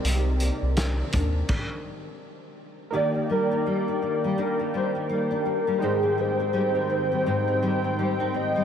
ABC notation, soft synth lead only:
X:1
M:4/4
L:1/8
Q:"Swing 16ths" 1/4=83
K:Eb
V:1 name="Soft synth lead"
G z6 z | d B2 z B c B2 | A c3 c3 e |]